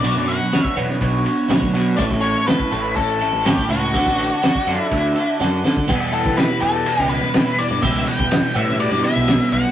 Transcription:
Already playing: lead electric guitar D5, transistor combo organ F#5 B5 C#6
0.02 picked electric bass B1, clean electric guitar B2 F#3 B3 D4 F#4 C#5, ride
0.15 picked electric bass F#2
0.27 clean electric guitar B3 D4 F#4 C#5, lead electric guitar F#5, ride
0.52 clean electric guitar B3 D4 F#4 C#5, snare, ride
0.65 kick
0.76 picked electric bass E2, clean electric guitar B2 F#3 B3 D4 F#4 C#5, ride
0.90 snare
1.01 picked electric bass B1, clean electric guitar B3 D4 F#4 C#5, kick, ride
1.25 clean electric guitar B3 D4 F#4 C#5, ride
1.48 picked electric bass D2, clean electric guitar B2 F#3 B3 D4 F#4 C#5, snare, ride
1.62 kick
1.73 picked electric bass B2, clean electric guitar B3 D4 F#4 C#5, snare, ride
1.97 picked electric bass A1, clean electric guitar A2 A3 C#4 E4 A4, transistor combo organ C#5 E5 A5, lead electric guitar D5, kick, ride
2.11 picked electric bass A1, kick
2.21 clean electric guitar C#4 E4 A4, lead electric guitar C#5, ride
2.47 clean electric guitar A3 C#4 E4 A4, lead electric guitar B4, snare, ride
2.60 kick
2.71 picked electric bass A1, clean electric guitar A2 A3 C#4 E4 A4, ride
2.95 picked electric bass A1, clean electric guitar A3 C#4 E4 A4, lead electric guitar A4, kick, ride
3.21 clean electric guitar C#4 E4 A4, ride
3.33 picked electric bass A1
3.45 clean electric guitar A2 A3 C#4 E4 A4, lead electric guitar G4, snare, ride
3.57 kick
3.69 picked electric bass C#2, clean electric guitar C#4 E4 A4, lead electric guitar F#4, ride
3.94 picked electric bass D2, clean electric guitar D3 D4 F#4 A4, transistor combo organ D5 F#5 D6, kick, ride
4.06 picked electric bass A1, kick
4.18 clean electric guitar D4 F#4 A4, ride
4.42 clean electric guitar D3 D4 F#4 A4, snare, ride
4.55 kick
4.66 picked electric bass F#2, clean electric guitar D3 D4 F#4 A4, snare, ride
4.80 lead electric guitar E4
4.91 picked electric bass D2, clean electric guitar D3 D4 F#4 A4, kick, ride
5.16 clean electric guitar D4 F#4 A4, ride
5.40 picked electric bass F#2, clean electric guitar D3 D4 F#4 A4, snare
5.64 picked electric bass D3, clean electric guitar D4 F#4 A4, snare
5.77 kick
5.87 clean electric guitar E2 B2 E3 G3 B3 G4, picked electric bass E2, kick, crash
6.13 lead electric guitar A4, ride
6.25 picked electric bass E3, kick
6.37 lead electric guitar B4, snare, ride
6.60 picked electric bass E2, clean electric guitar E2 B2 E3 G3 B3 G4, lead electric guitar A4, ride
6.86 ride
6.99 picked electric bass C#2
7.09 lead electric guitar B4, ride
7.23 snare
7.34 picked electric bass E3, snare, ride
7.59 lead electric guitar D5, ride
7.71 picked electric bass G2
7.82 picked electric bass C#2, clean electric guitar E2 B2 E3 G3 B3 G4, lead electric guitar E5, kick, ride
8.07 lead electric guitar G5, ride
8.19 picked electric bass E2, kick
8.31 snare, ride
8.54 clean electric guitar E2 B2 E3 G3 B3 G4, picked electric bass A2, lead electric guitar E5, ride
8.69 snare
8.80 lead electric guitar D5, ride
8.91 picked electric bass G2
9.04 lead electric guitar E5, snare, ride
9.16 picked electric bass B1
9.28 snare, ride
9.52 picked electric bass B1, lead electric guitar F#5, ride

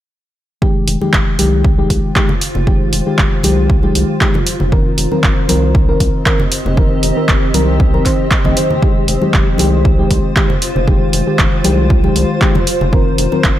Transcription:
0.62 fm electric piano D#3 G#3 G4, ambient pad F4, kick
0.80 ambient pad C5
0.88 analog synth bass F1, open hi-hat
1.01 fm electric piano D#3 G#3 G4, high conga
1.13 analog synth bass F1, kick, clap
1.39 analog synth bass C2, fm electric piano D#3 G#3 G4, open hi-hat, high conga
1.65 kick
1.78 fm electric piano D#3 G#3 G4
1.90 analog synth bass C2, kick, open hi-hat
2.16 fm electric piano D#3 G#3 G4, kick, clap
2.29 low conga
2.41 open hi-hat
2.55 analog synth bass F1, low conga
2.67 fm electric piano D#3 G#3 G4, kick
2.93 analog synth bass F1, open hi-hat
3.06 fm electric piano D#3 G#3 G4
3.18 analog synth bass F1, kick, clap
3.44 analog synth bass C2, fm electric piano D#3 G#3 G4, open hi-hat, high conga
3.70 kick
3.83 fm electric piano D#3 G#3 G4, high conga
3.95 analog synth bass C2, open hi-hat
4.21 fm electric piano D#3 G#3 G4, kick, clap
4.34 high conga, low conga
4.47 open hi-hat
4.60 analog synth bass F1, low conga
4.72 fm electric piano D#3 C4 A#4, ambient pad C4, kick
4.89 ambient pad G4 D#5
4.98 analog synth bass F1, open hi-hat
5.11 fm electric piano D#3 C4 A#4, high conga
5.23 analog synth bass F1, kick, clap
5.49 analog synth bass C2, fm electric piano D#3 C4 A#4, open hi-hat, high conga
5.75 kick
5.88 fm electric piano D#3 C4 A#4
6.00 analog synth bass C2, kick, open hi-hat
6.26 fm electric piano D#3 C4 A#4, kick, clap
6.40 low conga
6.52 open hi-hat
6.66 analog synth bass F1, low conga
6.77 fm electric piano D#3 C4 A#4, kick
7.03 analog synth bass F1, open hi-hat
7.17 fm electric piano D#3 C4 A#4
7.29 analog synth bass F1, kick, clap
7.54 analog synth bass C2, fm electric piano D#3 C4 A#4, open hi-hat, high conga
7.80 kick
7.94 fm electric piano D#3 C4 A#4, high conga
8.05 fm electric piano D#3 C4 C5, kick, clap, open hi-hat
8.31 kick, clap
8.44 analog synth bass A#1, fm electric piano D#3 C4 D#5, high conga, low conga
8.57 fm electric piano D#3 C4 C5, open hi-hat
8.70 low conga
8.82 fm electric piano D#3 G#3 G4, ambient pad F4, kick
9.08 analog synth bass F1, open hi-hat
9.22 fm electric piano D#3 G#3 G4, high conga
9.34 analog synth bass F1, kick, clap
9.58 analog synth bass C2, fm electric piano D#3 G#3 G4, open hi-hat, high conga
9.85 kick
9.99 fm electric piano D#3 G#3 G4
10.11 analog synth bass C2, kick, open hi-hat
10.36 fm electric piano D#3 G#3 G4, kick, clap
10.50 low conga
10.62 open hi-hat
10.76 analog synth bass F1, low conga
10.87 fm electric piano D#3 G#3 G4, kick
11.13 analog synth bass F1, open hi-hat
11.27 fm electric piano D#3 G#3 G4
11.39 analog synth bass F1, kick, clap
11.64 analog synth bass C2, fm electric piano D#3 G#3 G4, open hi-hat, high conga
11.90 kick
12.04 fm electric piano D#3 G#3 G4, high conga
12.16 analog synth bass C2, open hi-hat
12.41 fm electric piano D#3 G#3 G4, kick, clap
12.55 high conga, low conga
12.67 open hi-hat
12.81 analog synth bass F1, low conga
12.92 fm electric piano D#3 C4 A#4, ambient pad C4, kick
13.15 analog synth bass F1, ambient pad G4 D#5, open hi-hat
13.32 fm electric piano D#3 C4 A#4, high conga
13.44 analog synth bass F1, kick, clap

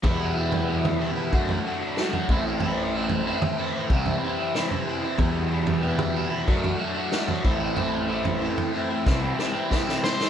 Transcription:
0.03 overdriven electric guitar E2 B2 E3 G3 B3 E4, picked electric bass E2, transistor combo organ E4 G4 B4 E5, kick, floor tom
0.36 overdriven electric guitar E3 G3 B3 E4
0.52 floor tom
0.68 overdriven electric guitar E2 B2 E3 G3 B3 E4
0.85 floor tom, mid tom
0.99 overdriven electric guitar E3 G3 B3 E4
1.16 overdriven electric guitar E3 G3 B3 E4
1.32 picked electric bass F#2, overdriven electric guitar F#3 A3 D4 F#4, transistor combo organ F#4 A4 D5, kick
1.49 overdriven electric guitar A3 D4 F#4, floor tom
1.66 overdriven electric guitar F#3 A3 D4 F#4
1.82 overdriven electric guitar A3 D4 F#4
1.97 overdriven electric guitar F#3 A3 D4 F#4, snare
2.13 overdriven electric guitar A3 D4 F#4, floor tom
2.29 picked electric bass A1, overdriven electric guitar A2 E3 A3 C4 E4, transistor combo organ E4 C5, kick
2.46 overdriven electric guitar A3 C4 E4
2.60 overdriven electric guitar A2 E3 A3, floor tom
2.64 overdriven electric guitar C4 E4
2.95 overdriven electric guitar E3 A3 C4 E4
3.09 floor tom
3.26 overdriven electric guitar A2 E3 A3 C4 E4
3.42 floor tom, mid tom
3.58 overdriven electric guitar E3 A3 C4 E4
3.75 overdriven electric guitar A3 C4 E4
3.90 picked electric bass C2, overdriven electric guitar C3 E3 G3 C4 E4, transistor combo organ G4 C5, kick
4.06 overdriven electric guitar G3 C4 E4, floor tom
4.24 overdriven electric guitar E3 G3 C4 E4
4.40 overdriven electric guitar G3 C4 E4
4.55 overdriven electric guitar C3 E3 G3 C4 E4, snare
4.70 overdriven electric guitar G3 C4 E4, floor tom
4.86 overdriven electric guitar E3 G3 C4 E4
5.02 overdriven electric guitar G3 C4 E4
5.18 overdriven electric guitar E2 B2 E3 G3 B3 E4, picked electric bass E2, transistor combo organ B4, kick, floor tom
5.50 overdriven electric guitar E3 G3 B3 E4
5.67 floor tom
5.82 overdriven electric guitar E2 B2 E3 G3 B3 E4
5.99 floor tom, mid tom
6.14 overdriven electric guitar E3 G3 B3 E4
6.30 overdriven electric guitar E3 G3 B3 E4
6.47 picked electric bass F#2, overdriven electric guitar F#3 A3 D4 F#4, transistor combo organ F#4 A4 D5 E5, kick
6.63 overdriven electric guitar A3 D4 F#4, floor tom
6.80 overdriven electric guitar F#3 A3 D4 F#4
6.95 overdriven electric guitar A3 D4 F#4
7.12 overdriven electric guitar F#3 A3 D4 F#4, snare
7.28 overdriven electric guitar A3 D4 F#4, floor tom
7.44 picked electric bass A1, overdriven electric guitar A2 E3 A3 C4 E4, transistor combo organ E4 C5 E5, kick
7.59 overdriven electric guitar A3 C4 E4
7.75 overdriven electric guitar A2 E3 A3 C4 E4, floor tom
8.08 overdriven electric guitar E3 A3 C4 E4
8.25 floor tom
8.40 overdriven electric guitar A2 E3 A3 C4 E4
8.58 floor tom
8.74 overdriven electric guitar E3 A3 C4 E4
8.89 overdriven electric guitar A3 C4 E4
9.05 picked electric bass C2, overdriven electric guitar C3 E3 G3 C4 E4, transistor combo organ G4 C5, kick, snare
9.22 overdriven electric guitar G3 C4 E4
9.38 overdriven electric guitar E3 G3 C4 E4, snare
9.54 overdriven electric guitar G3 C4 E4
9.70 overdriven electric guitar C3 E3 G3 C4 E4, kick, snare
9.88 overdriven electric guitar G3 C4 E4, snare
10.04 overdriven electric guitar E3 G3 C4 E4, lead electric guitar C5, snare
10.20 overdriven electric guitar G3 C4 E4, snare

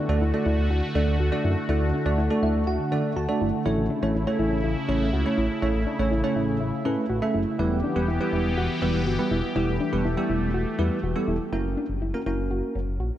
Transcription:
Already playing: analog synth pad D3 A3 F#4, synth arpeggio sound D4
0.09 analog synth bass D2, tine electric piano A3 D4 F#4 A4 D5
0.21 analog synth bass D2, synth arpeggio sound E4
0.34 tine electric piano A3 D4 F#4 A4 D5
0.46 analog synth bass D2, synth arpeggio sound E4
0.58 analog synth bass D2
0.70 analog synth bass D2, synth arpeggio sound F#4
0.95 analog synth bass D2, tine electric piano A3 D4 F#4 A4 D5, synth arpeggio sound D4
1.07 analog synth bass D2
1.20 analog synth bass D2, synth arpeggio sound F#4
1.32 tine electric piano A3 D4 F#4 A4 D5
1.44 analog synth bass F#2, synth arpeggio sound E4
1.69 analog synth bass D2, tine electric piano A3 D4 F#4 A4 D5, synth arpeggio sound E4
1.81 analog synth bass D2
1.93 synth arpeggio sound D4
2.06 analog synth bass D2, tine electric piano A3 D4 F#4 A4 D5
2.18 analog synth bass D2, synth arpeggio sound E4
2.30 tine electric piano A3 D4 F#4 A4 D5
2.43 analog synth bass D2, synth arpeggio sound E4, tine electric piano E5
2.55 analog synth bass D2
2.67 analog synth bass D2, synth arpeggio sound F#4, tine electric piano F#5
2.92 analog synth bass D3, tine electric piano A3 D4 F#4 A4 D5, synth arpeggio sound D4
3.16 analog synth bass D2, synth arpeggio sound F#4, tine electric piano A5
3.29 tine electric piano A3 D4 F#4 A4 D5
3.41 analog synth bass G1, synth arpeggio sound E4
3.66 analog synth bass A1, analog synth pad C#3 E4, tine electric piano A3 C#4 E4 A4 C#5, synth arpeggio sound E4
3.78 analog synth bass A1
3.90 synth arpeggio sound D4
4.02 analog synth bass A1, tine electric piano A3 C#4 E4 A4 C#5
4.15 analog synth bass A1, synth arpeggio sound E4
4.27 tine electric piano A3 C#4 E4 A4 C#5
4.39 analog synth bass A1, synth arpeggio sound E4
4.52 analog synth bass A1
4.64 analog synth bass A1, synth arpeggio sound E4
4.88 analog synth bass A1, tine electric piano A3 C#4 E4 A4 C#5, synth arpeggio sound C#4
5.01 analog synth bass A1
5.13 analog synth bass C#2, synth arpeggio sound F#4
5.26 tine electric piano A3 C#4 E4 A4 C#5
5.38 analog synth bass A1, synth arpeggio sound E4
5.62 analog synth bass A1, tine electric piano A3 C#4 E4 A4 C#5, synth arpeggio sound E4
5.75 analog synth bass A1
5.87 synth arpeggio sound D4
5.99 analog synth bass A1, tine electric piano A3 C#4 E4 A4 C#5
6.11 analog synth bass A1, synth arpeggio sound E4
6.24 tine electric piano A3 C#4 E4 A4 C#5
6.36 analog synth bass A1, synth arpeggio sound E4
6.48 analog synth bass A1
6.60 analog synth bass A1, synth arpeggio sound E4
6.85 analog synth bass A2, tine electric piano A3 C#4 E4 A4 B4, synth arpeggio sound C#4
7.09 analog synth bass A1, synth arpeggio sound F#4
7.22 tine electric piano A3 C#4 E4 A4 E5
7.34 analog synth bass F#1, synth arpeggio sound E4
7.59 analog synth bass E1, analog synth pad E3 B3 G4, tine electric piano G3 B3 E4 G4 B4, synth arpeggio sound E4
7.71 analog synth bass E1
7.83 synth arpeggio sound D4
7.96 analog synth bass E1, tine electric piano G3 B3 E4 G4 B4
8.08 analog synth bass E1, synth arpeggio sound E4
8.20 tine electric piano G3 B3 E4 G4 B4
8.33 analog synth bass E1, synth arpeggio sound E4
8.45 analog synth bass E1
8.57 analog synth bass E1, synth arpeggio sound F#4
8.82 analog synth bass E1, tine electric piano G3 B3 E4 G4 B4, synth arpeggio sound E4
8.94 analog synth bass E1
9.06 analog synth bass G1, synth arpeggio sound F#4
9.19 tine electric piano G3 B3 E4 G4 B4
9.31 analog synth bass E1, synth arpeggio sound E4
9.56 analog synth bass E1, tine electric piano G3 B3 E4 G4 B4, analog synth pad A3, synth arpeggio sound E4
9.68 analog synth bass E1
9.80 synth arpeggio sound D4
9.92 analog synth bass E1, tine electric piano G3 B3 E4 G4 B4
10.05 analog synth bass E1, synth arpeggio sound E4
10.17 tine electric piano G3 B3 E4 G4 A4
10.29 analog synth bass E1, synth arpeggio sound E4
10.42 analog synth bass E1
10.54 analog synth bass E1, synth arpeggio sound F#4
10.79 analog synth bass E2, tine electric piano G3 B3 E4 G4 B4, synth arpeggio sound E4
11.03 analog synth bass E1, synth arpeggio sound F#4
11.16 tine electric piano G3 B3 E4 G4 A4
11.28 analog synth bass E1, synth arpeggio sound E4
11.52 analog synth bass F#1, tine electric piano A#3 C#4 F#4 A#4, synth arpeggio sound E4
11.65 analog synth bass F#1
11.77 synth arpeggio sound D4
11.89 analog synth bass F#1
12.02 analog synth bass F#1, synth arpeggio sound E4
12.14 tine electric piano A#3 C#4 F#4 A#4
12.26 analog synth bass F#1, tine electric piano A#3 C#4 F#4 A#4, synth arpeggio sound E4
12.39 analog synth bass F#1
12.51 analog synth bass F#1, synth arpeggio sound F#4
12.75 analog synth bass F#1, synth arpeggio sound C#4
12.88 analog synth bass F#1
13.00 analog synth bass A#1, synth arpeggio sound F#4

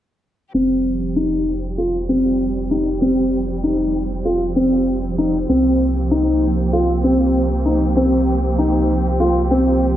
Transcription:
0.53 sub bass F1, string section F3 G3 C4 G4, felt piano C4
1.16 felt piano D#4
1.78 felt piano F4
2.09 felt piano C4
2.71 felt piano D#4
3.02 felt piano C4
3.63 felt piano D#4
4.25 felt piano F4
4.56 felt piano C4
5.18 felt piano D#4
5.48 sub bass C2, string section A#3 G4, felt piano C4
6.11 felt piano D#4
6.73 felt piano F4
7.04 felt piano C4
7.65 felt piano D#4
7.96 felt piano C4
8.58 felt piano D#4
9.20 felt piano F4
9.51 felt piano C4

